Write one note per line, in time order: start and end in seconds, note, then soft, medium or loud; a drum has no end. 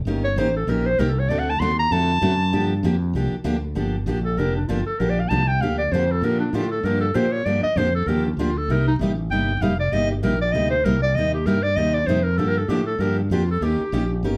0.05 0.35 G1 medium
0.05 0.25 D#3 medium
0.05 0.26 A#3 medium
0.05 0.26 C#4 medium
0.05 0.26 G4 medium
0.05 0.26 A#4 medium
0.25 0.39 C#5 medium
0.36 0.66 A1 medium
0.36 0.47 D#3 medium
0.36 0.48 A#3 medium
0.36 0.48 C#4 medium
0.36 0.48 G4 medium
0.36 0.48 A#4 medium
0.36 0.55 C5 medium
0.56 0.70 A4 medium
0.67 0.97 A#1 medium
0.67 0.87 D#3 medium
0.67 0.87 A#3 medium
0.67 0.87 C#4 medium
0.67 0.87 G4 medium
0.67 0.87 A#4 medium
0.67 0.88 A#4 medium
0.86 1.01 C5 loud
0.99 1.28 C2 medium
0.99 1.09 D#3 medium
0.99 1.09 A#3 medium
0.99 1.09 C#4 medium
0.99 1.09 G4 medium
0.99 1.10 A#4 medium
0.99 1.10 A#4 loud
1.09 1.21 A4 medium
1.19 1.31 C#5 medium
1.29 1.59 D2 medium
1.29 1.49 D3 medium
1.29 1.49 A3 medium
1.29 1.49 C4 medium
1.29 1.49 F#4 medium
1.29 1.49 A4 medium
1.29 1.41 D5 medium
1.39 1.52 F#5 medium
1.50 1.61 A5 medium
1.60 1.90 D#2 medium
1.60 1.71 D3 medium
1.60 1.71 A3 medium
1.60 1.71 C4 medium
1.60 1.71 F#4 medium
1.60 1.72 A4 medium
1.60 1.78 C6 loud
1.79 1.94 A#5 loud
1.91 2.21 F2 medium
1.91 2.10 D3 medium
1.91 2.10 A3 medium
1.91 2.11 C4 medium
1.91 2.11 F#4 medium
1.91 2.11 A4 medium
1.91 2.84 A5 medium
2.21 2.51 F#2 medium
2.21 2.32 D3 medium
2.21 2.32 A3 medium
2.21 2.32 C4 medium
2.21 2.32 F#4 medium
2.21 2.33 A4 medium
2.52 2.83 G2 medium
2.52 2.72 D3 medium
2.52 2.72 F3 medium
2.52 2.72 A#3 medium
2.52 2.72 D4 medium
2.52 2.72 G4 medium
2.83 3.13 F2 medium
2.83 2.94 D3 medium
2.83 2.94 F3 medium
2.83 2.94 A#3 medium
2.83 2.94 D4 medium
2.83 2.95 G4 medium
3.13 3.30 C2 medium
3.13 3.34 D3 medium
3.13 3.34 F3 medium
3.13 3.34 A#3 medium
3.13 3.34 D4 medium
3.13 3.34 G4 medium
3.32 muted fretless electric bass stroke soft
3.44 3.74 D2 medium
3.44 3.55 D3 medium
3.44 3.55 F3 medium
3.44 3.55 A#3 loud
3.44 3.56 D4 loud
3.44 3.55 G4 loud
3.75 4.05 G1 medium
3.75 3.95 D3 medium
3.75 3.95 F3 medium
3.75 3.95 A#3 medium
3.75 3.95 D4 medium
3.75 3.95 G4 medium
4.06 4.36 A#1 medium
4.06 4.17 D3 medium
4.06 4.17 F3 medium
4.06 4.18 A#3 medium
4.06 4.18 D4 medium
4.06 4.18 G4 medium
4.25 4.39 A4 medium
4.37 4.67 F1 medium
4.37 4.57 D3 medium
4.37 4.57 F3 medium
4.37 4.57 A#3 medium
4.37 4.58 D4 medium
4.37 4.58 G4 medium
4.37 4.56 A#4 medium
4.56 4.69 D4 medium
4.68 4.85 G1 medium
4.68 4.79 D3 medium
4.68 4.79 F3 medium
4.68 4.79 A#3 medium
4.68 4.79 D4 medium
4.68 4.86 F4 medium
4.68 4.79 G4 medium
4.86 5.00 A4 medium
4.86 muted fretless electric bass stroke soft
4.99 5.29 A#1 medium
4.99 5.19 D3 medium
4.99 5.19 F3 medium
4.99 5.19 A#3 medium
4.99 5.19 D4 medium
4.99 5.19 G4 medium
4.99 5.11 A#4 medium
5.10 5.21 D5 medium
5.20 5.31 F5 medium
5.29 5.60 C2 medium
5.29 5.41 D3 medium
5.29 5.41 F3 medium
5.29 5.41 A#3 medium
5.29 5.41 D4 medium
5.29 5.41 G4 medium
5.29 5.49 A5 loud
5.47 5.63 G5 medium
5.60 5.91 D2 medium
5.60 5.81 D3 medium
5.60 5.81 F3 medium
5.60 5.81 A#3 medium
5.60 5.81 D4 medium
5.60 5.81 G4 medium
5.60 5.78 F5 medium
5.78 5.94 D5 medium
5.92 6.21 F2 medium
5.92 6.03 D3 medium
5.92 6.03 F3 medium
5.92 6.03 A#3 medium
5.92 6.03 D4 medium
5.92 6.04 G4 medium
5.92 6.13 C5 medium
6.12 6.25 A4 medium
6.21 6.52 A#2 medium
6.21 6.42 D3 medium
6.21 6.42 F3 medium
6.21 6.42 A#3 medium
6.21 6.42 D4 medium
6.21 6.42 G4 medium
6.21 6.39 A#4 medium
6.39 6.56 D4 medium
6.53 6.83 A2 medium
6.53 6.64 D3 medium
6.53 6.64 F3 medium
6.53 6.64 A#3 medium
6.53 6.65 D4 medium
6.53 6.71 F4 medium
6.53 6.65 G4 medium
6.71 6.86 A4 medium
6.83 7.14 G2 medium
6.83 7.04 D3 medium
6.83 7.04 F3 medium
6.83 7.04 A#3 medium
6.83 7.04 D4 medium
6.83 7.04 G4 medium
6.83 7.00 A#4 medium
7.01 7.16 A4 medium
7.14 7.45 A#2 medium
7.14 7.25 D3 medium
7.14 7.25 F3 medium
7.14 7.26 A#3 medium
7.14 7.26 D4 medium
7.14 7.25 G4 medium
7.14 7.33 C5 medium
7.32 7.47 C#5 medium
7.45 7.62 G2 medium
7.45 7.65 D3 medium
7.45 7.65 F3 medium
7.45 7.65 A#3 medium
7.45 7.65 D4 medium
7.45 7.66 G4 medium
7.45 7.63 D5 medium
7.63 7.79 D#5 loud
7.63 muted fretless electric bass stroke soft
7.76 8.05 F2 medium
7.76 7.87 D3 medium
7.76 7.87 F3 medium
7.76 7.87 A#3 medium
7.76 7.87 D4 medium
7.76 7.88 G4 medium
7.76 7.95 C5 medium
7.95 8.08 A4 medium
8.06 8.36 D#2 medium
8.06 8.27 D3 medium
8.06 8.27 F3 medium
8.06 8.27 A#3 medium
8.06 8.27 D4 medium
8.06 8.27 G4 medium
8.06 8.25 A#4 medium
8.25 8.40 D4 soft
8.37 8.67 D2 medium
8.37 8.49 D3 medium
8.37 8.49 F3 medium
8.37 8.49 A#3 medium
8.37 8.49 D4 medium
8.37 8.59 F4 medium
8.37 8.50 G4 loud
8.58 8.72 A4 medium
8.68 8.98 C2 medium
8.68 8.89 C3 medium
8.68 8.89 G3 medium
8.68 8.89 A#3 medium
8.68 8.89 D#4 medium
8.68 8.89 G4 medium
8.68 8.87 A#4 medium
8.88 8.95 D#4 medium
8.99 9.29 A1 medium
8.99 9.11 C3 medium
8.99 9.11 G3 medium
8.99 9.11 A#3 medium
8.99 9.11 D#4 medium
8.99 9.11 G4 medium
9.30 9.60 G1 medium
9.30 9.50 C3 medium
9.30 9.51 G3 medium
9.30 9.51 A#3 medium
9.30 9.51 D#4 medium
9.30 9.51 G4 medium
9.30 9.63 G5 medium
9.60 9.91 F1 medium
9.60 9.72 C3 medium
9.60 9.72 G3 medium
9.60 9.72 A#3 medium
9.60 9.72 D#4 loud
9.60 9.73 G4 medium
9.60 9.79 F5 medium
9.80 9.95 D5 medium
9.92 10.22 G1 medium
9.92 10.12 C3 medium
9.92 10.12 G3 medium
9.92 10.12 A#3 medium
9.92 10.12 D#4 medium
9.92 10.12 G4 medium
9.92 10.11 D#5 medium
10.11 10.24 G4 medium
10.23 10.53 A#1 medium
10.23 10.33 C3 medium
10.23 10.34 G3 medium
10.23 10.34 A#3 medium
10.23 10.33 D#4 medium
10.23 10.34 G4 medium
10.23 10.41 A#4 medium
10.41 10.54 D5 medium
10.52 10.83 D2 medium
10.52 10.73 C3 medium
10.52 10.73 G3 medium
10.52 10.73 A#3 medium
10.52 10.74 D#4 medium
10.52 10.74 G4 medium
10.52 10.70 D#5 medium
10.70 10.86 C5 medium
10.85 11.14 C2 medium
10.85 10.95 C3 medium
10.85 10.96 G3 medium
10.85 10.96 A#3 loud
10.85 10.96 D#4 medium
10.85 10.96 G4 medium
10.85 11.02 A#4 medium
11.02 11.17 D5 medium
11.15 11.45 D#2 medium
11.15 11.35 C3 medium
11.15 11.36 G3 medium
11.15 11.36 A#3 medium
11.15 11.36 D#4 medium
11.15 11.36 G4 medium
11.15 11.33 D#5 medium
11.34 11.48 G4 medium
11.46 11.76 G2 medium
11.46 11.57 C3 medium
11.46 11.57 G3 medium
11.46 11.57 A#3 medium
11.46 11.57 D#4 medium
11.46 11.57 G4 medium
11.46 11.65 A#4 medium
11.63 11.78 D5 medium
11.76 12.06 D#2 medium
11.76 11.96 C3 medium
11.76 11.96 G3 medium
11.76 11.97 A#3 medium
11.76 11.97 D#4 medium
11.76 11.97 G4 medium
11.76 11.96 D#5 medium
11.94 12.08 D5 medium
12.07 12.37 F2 medium
12.07 12.18 C3 medium
12.07 12.19 G3 medium
12.07 12.19 A#3 medium
12.07 12.19 D#4 medium
12.07 12.19 G4 loud
12.07 12.25 C5 medium
12.23 12.39 A#4 medium
12.38 12.68 G2 medium
12.38 12.58 D3 medium
12.38 12.58 F3 medium
12.38 12.58 A#3 medium
12.38 12.58 D4 medium
12.38 12.58 G4 medium
12.38 12.49 A4 medium
12.48 12.59 A#4 loud
12.57 12.70 A4 medium
12.68 12.98 A2 medium
12.68 12.80 D3 medium
12.68 12.80 F3 medium
12.68 12.80 A#3 medium
12.68 12.80 D4 medium
12.68 12.86 G4 medium
12.68 12.80 G4 medium
12.87 13.01 A4 medium
12.99 13.29 G2 medium
12.99 13.19 D3 medium
12.99 13.20 F3 medium
12.99 13.20 A#3 medium
12.99 13.19 D4 medium
12.99 13.20 G4 medium
12.99 13.18 A#4 medium
13.19 13.33 D4 soft
13.30 13.60 F2 medium
13.30 13.42 D3 medium
13.30 13.41 F3 medium
13.30 13.42 A#3 medium
13.30 13.42 D4 loud
13.30 13.49 F4 medium
13.30 13.42 G4 medium
13.51 13.64 A4 medium
13.61 13.78 D#2 medium
13.61 13.81 D#3 medium
13.61 13.81 A#3 medium
13.61 13.81 C#4 medium
13.61 13.81 G4 medium
13.61 14.24 G4 medium
13.61 13.82 A#4 medium
13.80 muted fretless electric bass stroke soft
13.92 14.22 A#1 medium
13.92 14.03 D#3 medium
13.92 14.03 A#3 medium
13.92 14.03 C#4 medium
13.92 14.03 G4 medium
13.92 14.03 A#4 medium
14.23 14.37 G1 medium
14.23 14.37 D#3 medium
14.23 14.37 A#3 medium
14.23 14.37 C#4 medium
14.23 14.37 G4 medium
14.23 14.37 A#4 medium